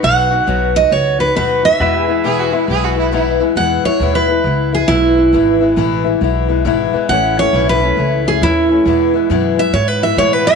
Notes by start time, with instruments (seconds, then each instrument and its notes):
Already playing: pedal steel guitar F#4 B4 D#5
0.03 upright bass B1, steel-string acoustic guitar B2 F#3 B3 D#4 F#4 F#5
0.30 steel-string acoustic guitar B3 D#4 F#4
0.47 upright bass B1, steel-string acoustic guitar B2 F#3 B3 D#4 F#4
0.75 steel-string acoustic guitar B3 D#4 F#4 D#5
0.90 upright bass C#2, steel-string acoustic guitar F#3 B3 D#4 F#4 C#5
1.19 steel-string acoustic guitar B3 D#4 F#4 B4
1.35 upright bass D#2, steel-string acoustic guitar B2 F#3 B3 D#4 F#4 B4
1.63 steel-string acoustic guitar B3 D#4 F#4 E5
1.80 upright bass E2, steel-string acoustic guitar E2 B2 E3 G#3 B3 E4, pedal steel guitar F#4 B4 E5
2.05 steel-string acoustic guitar B3 E4, pedal steel guitar G#4
2.10 steel-string acoustic guitar E3 G#3
2.24 steel-string acoustic guitar E2 B2 E3 G#3 B3 E4, fiddle G#4
2.39 fiddle F#4
2.52 steel-string acoustic guitar E3 G#3 B3 E4, fiddle E4
2.68 upright bass B1, steel-string acoustic guitar E3 G#3 B3 E4, fiddle G#4
2.84 fiddle F#4
2.96 steel-string acoustic guitar E3 G#3 B3 E4, fiddle E4
3.12 steel-string acoustic guitar E2 B2 E3 G#3 B3 E4, fiddle E4
3.40 steel-string acoustic guitar E3 G#3 B3 E4
3.56 upright bass E2, steel-string acoustic guitar E2 B2 E3 G#3 B3 E4 F#5
3.84 steel-string acoustic guitar E3 G#3 B3 E4 C#5, muted upright bass stroke
4.00 upright bass D#2, steel-string acoustic guitar E2 B2 E3 G#3 B3 E4
4.15 steel-string acoustic guitar B4
4.28 steel-string acoustic guitar E3 G#3 B3 E4
4.44 upright bass C#2, steel-string acoustic guitar E3 G#3 B3 E4
4.72 steel-string acoustic guitar E3 G#3 B3 E4 G#4
4.88 upright bass B1, steel-string acoustic guitar E2 B2 E3 G#3 B3 E4
5.16 steel-string acoustic guitar E3 G#3 B3 E4
5.33 upright bass G#1, steel-string acoustic guitar E2 B2 E3 G#3 B3 E4
5.60 steel-string acoustic guitar E3 G#3 B3 E4
5.76 upright bass A1, steel-string acoustic guitar E2 B2 E3 G#3 B3 E4
6.04 steel-string acoustic guitar E3 G#3 B3 E4
6.21 upright bass B1, steel-string acoustic guitar E3 G#3 B3 E4
6.48 steel-string acoustic guitar E3 G#3 B3 E4
6.65 upright bass G#1, steel-string acoustic guitar E2 B2 E3 G#3 B3 E4
6.93 steel-string acoustic guitar E3 G#3 B3 E4, muted upright bass stroke
7.09 upright bass A1, steel-string acoustic guitar A2 E3 A3 C#4 E4 F#5
7.37 steel-string acoustic guitar A3 C#4 E4 C#5
7.53 upright bass B1, steel-string acoustic guitar A2 E3 A3 C#4 E4
7.69 steel-string acoustic guitar B4
7.81 steel-string acoustic guitar A3 C#4 E4
7.97 upright bass C#2, steel-string acoustic guitar E3 A3 C#4 E4
8.25 steel-string acoustic guitar A3 C#4 E4 G#4
8.41 upright bass D#2, steel-string acoustic guitar A2 E3 A3 C#4 E4
8.69 steel-string acoustic guitar A3 C#4 E4
8.85 steel-string acoustic guitar E2 B2 E3 G#3 B3 E4, upright bass E2
9.13 steel-string acoustic guitar E3 G#3 B3 E4
9.30 steel-string acoustic guitar E2 B2 E3 G#3 B3 E4, upright bass F#2
9.58 steel-string acoustic guitar E3 G#3 B3 E4 E5
9.73 upright bass G#2, steel-string acoustic guitar E3 G#3 B3 E4 C#5
9.88 steel-string acoustic guitar B4
10.01 steel-string acoustic guitar E3 G#3 B3 E4 E5
10.17 steel-string acoustic guitar E2 B2 E3 G#3 B3 E4 C#5, upright bass A2
10.33 steel-string acoustic guitar B4
10.45 steel-string acoustic guitar E3 G#3 B3 E4 E5